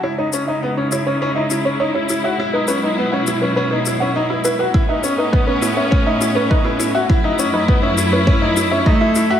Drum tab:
SH |-x-x-x-x|-x-x-x-x|-x-x-x-x|-x-x-x-x|
BD |--------|--------|o-o-o-o-|o-o-o-o-|